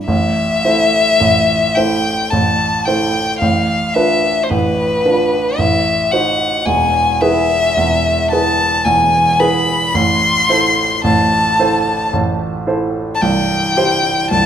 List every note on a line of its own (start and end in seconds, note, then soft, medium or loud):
0.06 0.62 A1 soft
0.06 0.62 A2 soft
0.06 1.77 E5 medium
0.65 1.17 A3 soft
0.65 1.17 E4 soft
0.65 1.17 C5 soft
1.20 1.75 A1 soft
1.20 1.75 A2 soft
1.75 2.28 A3 soft
1.75 2.28 E4 soft
1.75 2.28 C5 soft
1.75 2.31 G5 medium
2.30 2.85 A1 soft
2.30 2.85 A2 soft
2.30 2.87 A5 medium
2.85 3.37 A3 soft
2.85 3.37 E4 soft
2.85 3.37 C5 soft
2.85 3.39 G5 medium
3.39 3.94 A1 soft
3.39 3.94 A2 soft
3.39 3.95 F5 medium
3.94 4.46 D4 soft
3.94 4.46 F4 soft
3.94 4.46 B4 soft
3.94 4.45 E5 medium
4.43 4.51 C5 soft
4.50 5.03 A1 soft
4.50 5.03 A2 soft
4.50 5.59 B4 medium
5.05 5.55 D4 soft
5.05 5.55 F4 soft
5.05 5.55 B4 soft
5.58 6.11 A1 soft
5.58 6.11 A2 soft
5.58 6.13 E5 medium
6.11 6.63 D#4 soft
6.11 6.63 F#4 soft
6.11 6.63 C5 soft
6.11 6.67 F#5 medium
6.65 7.20 E1 soft
6.65 7.20 E2 soft
6.65 7.22 G#5 medium
7.21 7.73 E4 soft
7.21 7.73 G#4 soft
7.21 7.73 B4 soft
7.21 8.30 E5 medium
7.77 8.30 E1 soft
7.77 8.30 E2 soft
8.31 8.82 E4 soft
8.31 8.82 G#4 soft
8.31 8.82 B4 soft
8.31 8.87 A5 medium
8.85 9.38 E1 soft
8.85 9.38 E2 soft
8.85 9.41 G#5 medium
9.40 9.91 E4 soft
9.40 9.91 G#4 soft
9.40 9.91 B4 soft
9.40 9.97 B5 medium
9.94 10.48 A1 soft
9.94 10.48 A2 soft
9.94 11.04 C6 medium
10.49 11.00 E4 soft
10.49 11.00 A4 soft
10.49 11.00 C5 soft
11.04 11.57 A1 soft
11.04 11.57 A2 soft
11.04 12.11 A5 medium
11.59 12.09 E4 soft
11.59 12.09 A4 soft
11.59 12.09 C5 soft
12.13 12.66 A1 soft
12.13 12.66 A2 soft
12.67 13.18 E4 soft
12.67 13.18 A4 soft
12.67 13.18 C5 soft
13.15 13.23 A5 medium
13.22 13.75 C1 soft
13.22 13.75 C2 medium
13.22 14.30 G5 medium
13.77 14.26 E4 soft
13.77 14.26 G4 soft
13.77 14.27 C5 soft
14.30 14.46 C1 medium
14.30 14.46 C2 soft
14.30 14.46 A5 medium